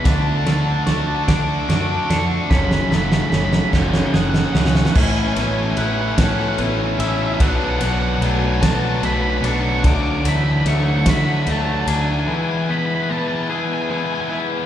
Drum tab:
CC |------------------------|------------------------|x-----------------------|------------------------|
RD |x---x---x---x---x---x---|------------------------|----x---x---x---x---x---|x---x---x---x---x---x---|
SD |o---o---o---o---o---o---|o-o-o-o-o-o-o-o-o-o-oooo|------------o-----------|------------o-----------|
BD |o-----------o-----------|o-----------o-----------|o-----------o-----------|o-----------o-----------|

CC |------------------------|------------------------|
RD |x---x---x---x---x---x---|------------------------|
SD |------------o-----------|------------------------|
BD |o-----------o-----------|------------------------|